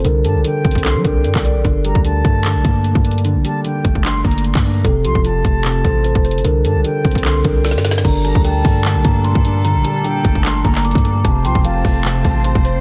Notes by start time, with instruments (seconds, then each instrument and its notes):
0.05 808-style bass C2, grand piano D3, kalimba A#4, closed hi-hat
0.25 808-style bass G2, grand piano G3, kalimba A4, flute A5, closed hi-hat
0.35 808-style bass C2
0.45 grand piano D3, kalimba G4, flute G5, closed hi-hat
0.65 808-style bass C2, grand piano C4, kick, closed hi-hat
0.71 closed hi-hat
0.75 kick, closed hi-hat
0.85 grand piano D3, kalimba A4, flute C6, clap, closed hi-hat
0.95 808-style bass G3
1.05 808-style bass C2, grand piano D4, kalimba A#4, flute G5, kick, closed hi-hat
1.24 808-style bass G2, kalimba D5, closed hi-hat
1.35 808-style bass C2, kick, clap
1.45 grand piano D5, kalimba D5, closed hi-hat
1.55 808-style bass A#1
1.65 808-style bass G1, grand piano D3, kick, closed hi-hat
1.85 grand piano G3, flute A#5, closed hi-hat
1.95 808-style bass D2, kick
2.04 grand piano D3, flute A5, closed hi-hat
2.25 808-style bass G2, grand piano A3, kick, closed hi-hat
2.45 grand piano D3, clap, closed hi-hat
2.55 808-style bass A#1
2.65 808-style bass G2, grand piano A#3, kick, closed hi-hat
2.84 closed hi-hat
2.95 808-style bass G2, kick
3.05 grand piano D4, closed hi-hat
3.11 closed hi-hat
3.18 closed hi-hat
3.25 grand piano D3, closed hi-hat
3.35 808-style bass A#1
3.45 grand piano G3, flute A5, closed hi-hat
3.65 grand piano D3, flute G5, closed hi-hat
3.84 808-style bass G1, grand piano A3, kick, closed hi-hat
3.95 kick
4.04 grand piano D3, flute C6, clap, closed hi-hat
4.24 808-style bass G1, grand piano A#3, flute A#5, kick, closed hi-hat
4.31 closed hi-hat
4.38 closed hi-hat
4.44 closed hi-hat
4.55 808-style bass G2, kick, clap
4.64 grand piano D4, open hi-hat
4.85 808-style bass F1, grand piano C3, kalimba A4, kick, closed hi-hat
5.05 808-style bass C2, grand piano F3, kalimba G4, flute C6, closed hi-hat
5.15 808-style bass F1, kick
5.24 grand piano C3, kalimba F4, flute A5, closed hi-hat
5.45 808-style bass F1, grand piano A3, kick, closed hi-hat
5.64 grand piano C3, clap, closed hi-hat
5.85 808-style bass A1, grand piano C4, kalimba A4, kick, closed hi-hat
6.04 kalimba C5, closed hi-hat
6.15 808-style bass F1, kick
6.25 grand piano C5, closed hi-hat
6.31 808-style bass G1, closed hi-hat
6.38 closed hi-hat
6.45 808-style bass C2, grand piano D3, kalimba A#4, closed hi-hat
6.65 808-style bass G2, grand piano G3, kalimba A4, flute A5, closed hi-hat
6.75 808-style bass C2
6.85 grand piano D3, kalimba G4, flute G5, closed hi-hat
7.04 808-style bass C2, grand piano C4, kick, closed hi-hat
7.11 808-style bass C2, kick, closed hi-hat
7.18 closed hi-hat
7.25 grand piano D3, kalimba A4, flute C6, clap, closed hi-hat
7.45 808-style bass C2, grand piano D4, kalimba A#4, flute G5, kick, closed hi-hat
7.64 kalimba D5, snare, closed hi-hat
7.71 808-style bass G2, snare
7.78 snare
7.85 grand piano D5, kalimba D5, snare, closed hi-hat
7.91 snare
7.98 snare
8.05 808-style bass G1, string section A#2 G3 D4 A4, grand piano D3, kalimba A#5, kick, closed hi-hat, crash
8.25 grand piano G3, kalimba A5, flute A#5, closed hi-hat
8.35 808-style bass D2, kick
8.44 grand piano D3, kalimba G5, flute A5, closed hi-hat
8.65 808-style bass G2, grand piano A3, kick, open hi-hat
8.85 grand piano D3, clap, closed hi-hat
8.95 808-style bass A#1
9.05 808-style bass G2, grand piano A#3, kalimba A#5, kick, closed hi-hat
9.24 kalimba C6, closed hi-hat
9.35 808-style bass G2, kick
9.45 grand piano D4, closed hi-hat
9.65 grand piano D3, kalimba A#5, closed hi-hat
9.75 808-style bass A#1
9.84 grand piano G3, kalimba A5, flute A5, closed hi-hat
10.04 grand piano D3, kalimba G5, flute G5, closed hi-hat
10.25 808-style bass G1, grand piano A3, kick, closed hi-hat
10.35 kick
10.44 grand piano D3, kalimba A5, flute C6, clap, closed hi-hat
10.64 808-style bass G1, grand piano A#3, flute A#5, kalimba A#5, kick, closed hi-hat
10.75 clap
10.85 kalimba D6, closed hi-hat
10.91 808-style bass G2, closed hi-hat
10.95 kick, closed hi-hat
11.05 grand piano D4, kalimba D6, closed hi-hat
11.25 808-style bass F1, grand piano C3, string section A3 C4 F4 C5, kalimba A5, kick, closed hi-hat
11.45 808-style bass C2, grand piano F3, kalimba G5, flute C6, closed hi-hat
11.55 808-style bass F1, kick
11.64 grand piano C3, kalimba F5, flute A5, closed hi-hat
11.85 808-style bass F1, grand piano A3, kick, open hi-hat
12.05 grand piano C3, clap, closed hi-hat
12.25 808-style bass A1, grand piano C4, kalimba A5, kick, closed hi-hat
12.44 kalimba C6, closed hi-hat
12.55 808-style bass F1, kick
12.65 grand piano C5, closed hi-hat
12.75 808-style bass G1